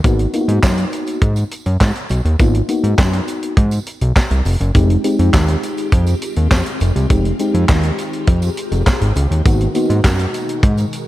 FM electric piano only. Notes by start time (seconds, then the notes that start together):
0.04 A#3 B3 D#4 F#4
0.33 A#3 B3 D#4 F4
0.41 F#4
2.39 A#3 B3 D#4 F4
2.68 A#3 B3 D#4 F#4
4.74 G#3 C4 D#4 G4
5.04 G#3 C4 D#4 G4
7.10 G#3 C4 D#4 G4
7.39 G#3 C4 D#4 G4
9.45 A#3 B3 D#4 F#4
9.75 A#3 B3 D#4 F#4